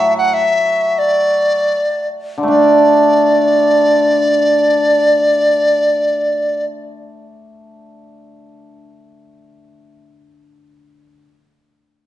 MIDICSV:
0, 0, Header, 1, 3, 480
1, 0, Start_track
1, 0, Tempo, 500000
1, 11583, End_track
2, 0, Start_track
2, 0, Title_t, "Dizi"
2, 0, Program_c, 0, 73
2, 0, Note_on_c, 0, 76, 70
2, 158, Note_off_c, 0, 76, 0
2, 170, Note_on_c, 0, 78, 71
2, 325, Note_on_c, 0, 76, 76
2, 339, Note_off_c, 0, 78, 0
2, 946, Note_on_c, 0, 74, 65
2, 961, Note_off_c, 0, 76, 0
2, 1997, Note_off_c, 0, 74, 0
2, 2397, Note_on_c, 0, 74, 63
2, 6382, Note_off_c, 0, 74, 0
2, 11583, End_track
3, 0, Start_track
3, 0, Title_t, "Hammered dulcimer"
3, 0, Program_c, 1, 15
3, 0, Note_on_c, 1, 45, 47
3, 0, Note_on_c, 1, 54, 47
3, 331, Note_off_c, 1, 45, 0
3, 1616, Note_off_c, 1, 54, 0
3, 2282, Note_on_c, 1, 50, 38
3, 2333, Note_on_c, 1, 57, 42
3, 2379, Note_on_c, 1, 62, 43
3, 8470, Note_off_c, 1, 62, 0
3, 9576, Note_off_c, 1, 57, 0
3, 10768, Note_off_c, 1, 50, 0
3, 11583, End_track
0, 0, End_of_file